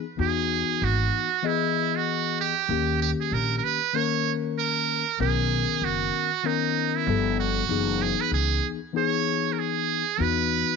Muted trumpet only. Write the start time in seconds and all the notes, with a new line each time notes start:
0.21 G#4
0.84 F#4
1.46 E4
1.96 F#4
2.40 G4
3.02 G4
3.21 G#4
3.33 A#4
3.58 A#4
3.64 B4
3.95 C#5
4.59 A#4
5.21 G#4
5.84 F#4
6.46 D#4
6.96 E4
7.40 F#4
8.02 G#4
8.21 B4
8.34 G#4
8.97 C#5
9.53 A#4
9.59 G#4
10.21 B4